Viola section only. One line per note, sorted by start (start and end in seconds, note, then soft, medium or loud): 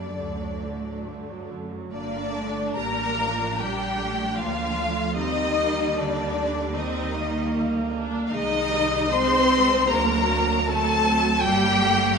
0.00 0.16 G3 soft
0.00 0.12 A#3 medium
0.17 0.38 D3 soft
0.17 1.70 A3 soft
0.39 0.61 F#3 soft
0.62 0.84 D3 soft
0.85 1.07 F#3 soft
1.07 1.29 D3 soft
1.30 1.51 F#3 soft
1.51 1.72 D3 soft
1.73 1.93 F#3 soft
1.94 2.33 A#3 medium
1.94 5.14 D4 medium
2.36 2.78 A3 medium
2.79 3.20 G3 medium
3.19 3.59 F3 soft
3.60 3.99 G3 medium
3.99 4.38 A3 medium
4.38 4.77 A#3 medium
4.78 5.18 A3 medium
5.16 6.75 G3 medium
5.16 5.56 C4 medium
5.58 5.97 A#3 medium
5.98 6.37 A#3 medium
6.37 6.76 A3 medium
6.76 7.52 G3 medium
6.76 7.14 C4 medium
7.13 8.30 A#3 medium
7.54 7.91 G3 medium
7.92 8.30 D4 medium
8.31 8.71 G#3 medium
8.31 9.90 D#4 medium
8.71 9.12 G3 medium
9.12 9.50 G#3 medium
9.52 9.89 G#3 medium
9.91 10.68 F#3 medium
9.91 10.66 D4 medium
10.69 11.43 F#3 medium
10.69 11.45 C4 medium
11.45 11.82 G3 medium
11.45 12.18 A#3 medium
11.83 12.18 A3 medium